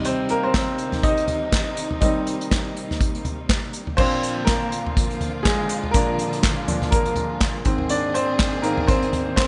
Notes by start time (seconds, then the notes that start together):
Already playing: C3 D#3 G3 D#4
0.05 C4 C5, closed hi-hat
0.29 A#3 A#4, closed hi-hat
0.43 C4 C5
0.54 C4 C5, kick, snare, clap, closed hi-hat
0.78 closed hi-hat
0.92 snare, floor tom
1.03 D#4 D#5, kick, closed hi-hat
1.17 closed hi-hat
1.28 closed hi-hat, floor tom
1.52 kick, snare, clap, closed hi-hat
1.77 closed hi-hat
1.91 floor tom
2.01 D#3 G3 A#3 C4 D#4 D#5, kick, closed hi-hat
2.27 closed hi-hat
2.41 closed hi-hat
2.51 kick, snare, clap, closed hi-hat
2.77 closed hi-hat
2.91 snare, floor tom
3.01 kick, closed hi-hat
3.15 closed hi-hat
3.25 closed hi-hat, floor tom
3.49 kick, snare, clap, closed hi-hat
3.73 closed hi-hat
3.87 floor tom
3.97 A#2 D3 F3 A#3 C4 D4 F4 C5, kick, crash
4.23 closed hi-hat
4.45 A#3 A#4, kick, snare, clap, closed hi-hat
4.72 closed hi-hat
4.86 floor tom
4.97 kick, closed hi-hat
5.10 closed hi-hat
5.21 closed hi-hat, floor tom
5.43 G#3 G#4, kick, snare, clap, closed hi-hat
5.69 closed hi-hat
5.84 floor tom
5.91 A#2 F3 G#3 A#3 D4 A#4, kick, closed hi-hat
6.19 closed hi-hat
6.33 closed hi-hat
6.43 kick, snare, clap, closed hi-hat
6.67 A#2 F3 D4, closed hi-hat, floor tom
6.82 snare, floor tom
6.91 A#3 A#4, kick, closed hi-hat
7.06 closed hi-hat
7.16 closed hi-hat, floor tom
7.40 kick, snare, clap, closed hi-hat
7.65 G#2 D#3 A#3 C4 G#4, kick, closed hi-hat
7.78 floor tom
7.89 D4 D5, closed hi-hat
8.14 C4 C5, closed hi-hat
8.39 kick, snare, clap, closed hi-hat
8.62 G#2 D#3 A#3 C4 A#4, closed hi-hat
8.78 floor tom
8.87 C4 C5, kick, closed hi-hat
9.02 closed hi-hat
9.13 closed hi-hat, floor tom
9.36 C4 C5, kick, snare, clap, closed hi-hat